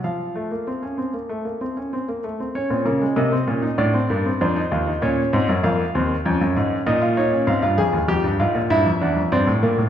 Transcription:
<<
  \new Staff \with { instrumentName = "Grand piano" } { \time 4/4 \key bes \minor \tempo 4 = 97 << { f''2.~ f''8 r8 | des''4 ees''4 d''4 c''4 | des''4 f''2 ees''8 des''8 | f''2 e''4 d''4 | } \\ { f8 a16 bes16 c'16 des'16 c'16 bes16 a16 bes16 c'16 des'16 c'16 bes16 a16 c'16 | des'16 c'16 bes16 aes16 bes16 c'16 des'16 ees'16 d'16 c'16 bes16 c'16 d'16 ees'16 f'16 ees'16 | des'8 c'8 bes8 c'8 des'4 ees'16 f'16 ees'16 des'16 | c'16 f'16 aes'8 g'8 f'8 e'8 d'8 c'8 bes8 | } >> }
  \new Staff \with { instrumentName = "Grand piano" } { \clef bass \time 4/4 \key bes \minor r1 | r16 bes,16 des8 c8 bes,8 a,8 g,8 f,8 ees,8 | bes,8 aes,16 ges,16 f,8 ees,8 f,16 ges,16 aes,8 bes,4 | aes,16 g,16 f,16 ees,16 f,16 g,16 aes,16 bes,16 g,16 f,16 e,16 f,16 g,16 a,16 bes,16 a,16 | }
>>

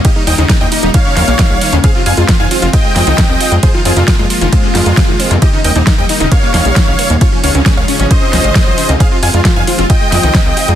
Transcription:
<<
  \new Staff \with { instrumentName = "Supersaw synth" } { \time 4/4 \key f \minor \tempo 4 = 134 <g' ees''>16 ees'16 <ees'' g''>16 ees'16 ees'16 <ees'' g''>16 ees'16 ees'16 <des'' f''>4.~ <des'' f''>16 r16 | <aes' f''>16 f'16 <f'' aes''>16 f'16 f'16 <f'' aes''>16 f'16 f'16 <ees'' g''>4.~ <ees'' g''>16 r16 | <aes' c''>16 f'16 <f' aes'>16 f'16 f'16 <aes f'>16 f'16 f'16 <aes f'>4.~ <aes f'>16 r16 | <g' ees''>16 ees'16 <ees'' g''>16 ees'16 ees'16 <ees'' g''>16 ees'16 ees'16 <des'' f''>4.~ <des'' f''>16 r16 |
<f' des''>16 des'16 <des'' f''>16 des'16 des'16 <des'' f''>16 des'16 des'16 <c'' ees''>4.~ <c'' ees''>16 r16 | <aes' f''>16 f'16 <f'' aes''>16 f'16 f'16 <f'' aes''>16 f'16 f'16 <ees'' g''>4.~ <ees'' g''>16 r16 | }
  \new Staff \with { instrumentName = "Analog synth pad" } { \time 4/4 \key f \minor << { <g ees'>1 | <aes f'>1~ | <aes f'>1 | <g ees'>1 |
<des des' ees' aes'>1 | aes1 | } \\ { bes1 | c'1 | bes1 | bes1 |
f'1 | c'1 | } >> }
  \new Staff \with { instrumentName = "Synth pluck" } { \clef bass \time 4/4 \key f \minor ees'16 g16 ees16 des16 bes16 bes,16 ees'16 g16 ees16 des16 bes16 bes,16 ees'16 g16 ees16 des16 | c'16 c16 f'16 aes16 f16 ees16 c'16 c16 f'16 aes16 f16 ees16 c'16 c16 f'16 aes16 | f16 ees16 c'16 c16 f'16 aes16 f16 ees16 c'16 c16 f'16 aes16 f16 ees16 c'16 c16 | r16 des16 bes16 bes,16 ees'16 g16 ees16 des16 bes16 bes,16 ees'16 g16 ees16 des16 bes16 bes,16 |
des'16 f16 des16 c16 aes16 aes,16 des'16 f16 des16 c16 aes16 aes,16 des'16 f16 des16 c16 | c'16 c16 f'16 aes16 f16 ees16 c'16 c16 f'16 aes16 f16 ees16 r16 c16 f'16 aes16 | }
  \new Staff \with { instrumentName = "Analog synth bass" } { \clef bass \time 4/4 \key f \minor r8 ees,16 ees,16 r16 ees,16 r16 ees,,16 r8 ees,16 bes,,16 r16 bes,,16 r16 ees,16 | r8 f,16 f,16 r16 f,16 r16 f,,16 r8 f,16 c,16 r16 c,16 r16 f,16 | r8 f,16 f,16 r16 f,16 r16 f,,16 r8 f,16 f,16 r16 f,,16 r16 f,16 | r8 ees,16 ees,16 r16 ees,16 r16 ees,,16 r8 ees,16 bes,,16 r16 bes,,16 r16 ees,16 |
r8 des,16 des,16 r16 des,16 r16 aes,,16 r8 des,16 aes,,16 r16 aes,,16 r16 des,16 | r8 f,16 f,16 r16 f,16 r16 f,,16 r8 f,16 c,16 r16 c,16 r16 f,16 | }
  \new DrumStaff \with { instrumentName = "Drums" } \drummode { \time 4/4 <hh bd cymr>8 hho16 hh16 <hh bd cymr sn>8 hho16 hh16 <hh bd cymr>8 <hho sn>16 hh16 <hh bd cymr sn>8 hho16 hh16 | <hh bd cymr>8 hho16 hh16 <hh bd cymr sn>8 hho16 hh16 <hh bd cymr>8 <hho sn>16 hh16 <hh bd cymr sn>8 hho16 hh16 | <hh bd cymr>8 hho16 hh16 <hh bd cymr sn>8 hho16 hh16 <hh bd cymr>8 <hho sn>16 hh16 <hh bd cymr sn>8 hho16 hh16 | <hh bd cymr>8 hho16 hh16 <hh bd cymr sn>8 hho16 hh16 <hh bd cymr>8 <hho sn>16 hh16 <hh bd cymr sn>8 hho16 hh16 |
<hh bd cymr>8 hho16 hh16 <hh bd cymr sn>8 hho16 hh16 <hh bd cymr>8 <hho sn>16 hh16 <hh bd cymr sn>8 hho16 hh16 | <hh bd cymr>8 hho16 hh16 <hh bd cymr sn>8 hho16 hh16 <hh bd cymr>8 <hho sn>16 hh16 <hh bd cymr sn>8 hho16 hh16 | }
>>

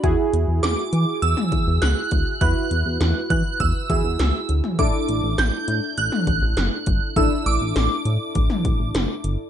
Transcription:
<<
  \new Staff \with { instrumentName = "Synth bell" } { \time 4/4 \key e \dorian \tempo 4 = 101 r4 d'''4 e'''4 fis'''4 | fis'''4. fis'''8 e'''8 e'''4 r8 | d'''4 g'''4 fis'''2 | e'''8 d'''2. r8 | }
  \new Staff \with { instrumentName = "Synth keys" } { \time 4/4 \key e \dorian <e' fis' gis'>1 | <e' fis' b'>2~ <e' fis' b'>8 <e' fis' gis'>4. | <d' e' a'>1 | <d' e' a'>1 | }
  \new Staff \with { instrumentName = "Analog synth bass" } { \clef bass \time 4/4 \key e \dorian e,16 r16 e,16 e,16 e,16 r16 e16 r16 e,16 r16 e,16 e,16 cis,16 r16 d,16 r16 | e,16 r16 e,16 e,16 e,16 r16 e16 r16 e,16 r16 e,16 e,16 cis,16 r16 d,16 r16 | a,,16 r16 a,,16 a,,16 a,,16 r16 a,16 r16 a,,16 r16 a,,16 a,,16 fis,,16 r16 g,,16 r16 | a,,16 r16 a,,16 a,,16 a,,16 r16 a,16 r16 a,,16 r16 a,,16 a,,16 fis,,16 r16 g,,16 r16 | }
  \new DrumStaff \with { instrumentName = "Drums" } \drummode { \time 4/4 <hh bd>8 hh8 <hh sn>8 hh8 hh16 toml16 <hh bd>8 <hh sn>8 <hh bd>8 | <hh bd>8 hh8 <hh sn>8 <hh bd>8 <hh bd>8 <hh bd>8 <hh sn>8 hh16 toml16 | <hh bd>8 hh8 <hh sn>8 hh8 hh16 toml16 <hh bd>8 <hh sn>8 <hh bd>8 | <hh bd>8 hh8 <hh sn>8 hh8 <hh bd>16 toml16 <hh bd>8 <hh sn>8 hh8 | }
>>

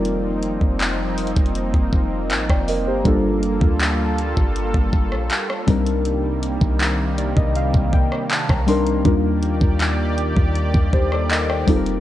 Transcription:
<<
  \new Staff \with { instrumentName = "Synth keys" } { \time 4/4 \key ees \lydian \tempo 4 = 80 << { r2. r16 <d'' g''>16 <bes' ees''>16 <g' c''>16~ | <g' c''>16 r2. r8. | r4. d''16 ees''16 f''8 g''8 a''16 bes''16 c'''8 | r2 r8 <g' c''>16 <a' d''>16 <bes' ees''>16 <d'' g''>8 r16 | } \\ { <g c' ees' f' bes'>4. r2 r8 | <g bes d' f' a'>2 r4. <g c' d' ees' bes'>8~ | <g c' d' ees' bes'>4. r2 <g c' d' ees' bes'>8 | <g d' ees' f' bes'>2 r4. <g c' ees' f' a' bes'>8 | } >> }
  \new Staff \with { instrumentName = "Analog synth pad" } { \time 4/4 \key ees \lydian << { <f c' ees'>1 | <g f' a'>2.~ <g f' a'>8 <c g bes>8~ | <c g bes>1 | <ees d''>2.~ <ees d''>8 <f c' ees'>8 | } \\ { bes1~ | bes2.~ bes8 ees8~ | ees1 | g'2.~ g'8 bes'8 | } >> }
  \new Staff \with { instrumentName = "808-style bass" } { \clef bass \time 4/4 \key ees \lydian f,,8. f,,4 f,,8 f,,8. a,,16 f,,8 g,,16 | g,,8. d,4 g,,8 g,,8 bes,,16 r8 c,8~ | c,8. c,4 c,8 c,8 r8 c,8. | ees,8. ees,4 ees,8 ees,4~ ees,16 f,,8 | }
  \new DrumStaff \with { instrumentName = "Drums" } \drummode { \time 4/4 hh8 hh16 bd16 <hc hh>8 <hh hho>32 hh32 <hh bd>32 hh32 hh16 bd16 bd8 <hc hh>16 <bd ss>16 hho8 | <hh bd>8 hh16 bd16 <hc hh>8 hh16 bd16 hh16 bd16 bd16 ss16 <hc hh>16 ss16 <hh hho bd>16 hh16 | hh8 hh16 bd16 <hc hh>8 hh16 bd16 hh16 bd16 bd16 ss16 <hc hh>16 <bd ss>16 <hh hho>16 hh16 | <hh bd>8 hh16 bd16 <hc hh>8 hh16 bd16 hh16 bd16 bd16 ss16 <hc hh>16 ss16 <hh hho bd>16 hh16 | }
>>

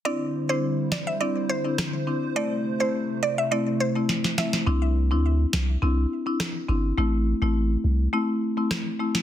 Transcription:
<<
  \new Staff \with { instrumentName = "Synth pluck" } { \time 4/4 \key c \mixolydian \tempo 4 = 104 d''8 r16 c''16 r8 d''16 e''16 d''16 r16 c''16 r4 r16 | d''8 r16 c''16 r8 d''16 e''16 d''16 r16 c''16 r8. e''16 r16 | r1 | r1 | }
  \new Staff \with { instrumentName = "Marimba" } { \time 4/4 \key c \mixolydian <c' d' e'>8. <c' d' e'>16 r4 <c' d' e'>16 r8 <c' d' e'>16 r8 <c' d' e'>16 r16 | <a c' e'>8. <a c' e'>16 r4 <a c' e'>16 r8 <a c' e'>16 r8 <a c' e'>16 r16 | <c' d' e'>8. <c' d' e'>16 r4 <c' d' e'>16 r8 <c' d' e'>16 r8 <c' d' e'>16 r16 | <a c' e'>8. <a c' e'>16 r4 <a c' e'>16 r8 <a c' e'>16 r8 <a c' e'>16 r16 | }
  \new Staff \with { instrumentName = "Analog synth pad" } { \clef bass \time 4/4 \key c \mixolydian << { <e' c''>1~ | <e' c''>1 | r1 | r1 | } \\ { <d g>1 | <c a>1 | r1 | r1 | } >> }
  \new Staff \with { instrumentName = "Sub bass" } { \clef bass \time 4/4 \key c \mixolydian r1 | r1 | c,8. d,8. c,8 c,8 r4 g,,8 | a,,8. a,,8. c,8 r2 | }
  \new DrumStaff \with { instrumentName = "Drums" } \drummode { \time 4/4 r4 r8 sn8 r4 <ss sn>4 | r4 r4 r4 sn16 sn16 sn16 sn16 | r4 r8 sn8 r4 <ss sn>4 | r4 r4 r4 <ss sn>8. sn16 | }
>>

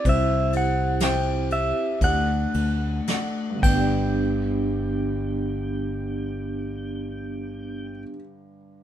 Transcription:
<<
  \new Staff \with { instrumentName = "Pedal steel guitar" } { \time 4/4 \key g \major \tempo 4 = 52 e''8 fis''8 g''8 e''8 fis''4. g''8~ | g''1 | }
  \new Staff \with { instrumentName = "Upright piano" } { \time 4/4 \key g \major c'4 <g' c'' e''>4 d'4 <a' d'' fis''>8 <g, d b d' g' d''>8~ | <g, d b d' g' d''>1 | }
  \new Staff \with { instrumentName = "Vibraphone" } { \time 4/4 \key g \major e'8 <c' e' g'>8 c'8 g'8 a4. <b d' g'>8~ | <b d' g'>1 | }
  \new Staff \with { instrumentName = "Fingered electric bass" } { \clef bass \time 4/4 \key g \major c,2 d,8 d,8 r8 g,,8~ | g,,1 | }
  \new DrumStaff \with { instrumentName = "Drums" } \drummode { \time 4/4 <bd cymr>8 cymr8 <cymr sn>8 cymr8 <bd cymr>8 cymr8 <cymr sn>8 <cymc bd>8 | r4 r4 r4 r4 | }
>>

